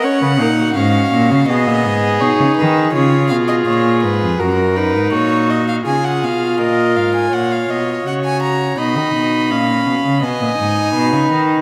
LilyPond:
<<
  \new Staff \with { instrumentName = "Violin" } { \time 4/4 \key fis \mixolydian \tempo 4 = 82 fis''4 eis''4 dis''4 cis''8 b'8 | cis''8 eis''16 dis''16 cis''8 b'8 ais'8 b'8 cis''8 dis''16 eis''16 | gis''16 fis''16 eis''8 dis''8 eis''16 gis''16 fis''16 eis''16 dis''8 fis''16 gis''16 ais''8 | b''2 gis''2 | }
  \new Staff \with { instrumentName = "Violin" } { \time 4/4 \key fis \mixolydian cis''16 b'16 ais'16 fis'4~ fis'16 gis'2 | gis'2 ais'4 fis'4 | gis'4 ais'4 cis''2 | dis''4 eis''4 dis''4 b'4 | }
  \new Staff \with { instrumentName = "Viola" } { \time 4/4 \key fis \mixolydian cis'8 dis'8 cis'4 b4 dis'4 | eis'2 fis'8 dis'4. | eis'2. fis'4 | dis'4 cis'4 b8 dis'4. | }
  \new Staff \with { instrumentName = "Cello" } { \clef bass \time 4/4 \key fis \mixolydian r16 cis16 ais,8 gis,8 ais,16 cis16 b,16 ais,16 gis,8 b,16 cis16 dis8 | cis8 b,8 ais,8 gis,16 eis,16 fis,8. gis,16 ais,4 | cis8 b,8 ais,8 gis,8 ais,8 b,8 cis4 | b,16 dis16 b,8 ais,8 b,16 cis16 b,16 ais,16 gis,8 b,16 cis16 dis8 | }
>>